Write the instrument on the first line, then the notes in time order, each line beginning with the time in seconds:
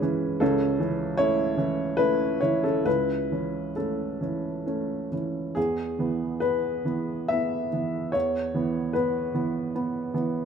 upright piano
Already playing: C#2 C#3 E3 G#3 C#4 E4 B4
0.02 E3 C#4
0.40 C#2 C#3 C#4 A4
0.80 E3 C#4
1.17 A3 C#4 E4 C#5
1.57 E3 C#4
1.97 A3 C#4 E4 B4
2.41 E3 C#4 E4 C#5
2.63 C#4 A4
2.85 C#2 C#3 E4 B4
3.32 E3 C#4
3.76 A3 C#4 A4
4.21 E3 C#4
4.66 A3 C#4
5.12 E3 C#4
5.55 E2 G#4
5.99 E3 B3
6.40 B3 B4
6.85 E3 B3
7.28 B3 E5
7.73 E3 B3
8.12 E2 C#5
8.54 E3 B3
8.93 B3 B4
9.34 E3 B3
9.75 B3
10.14 E3 B3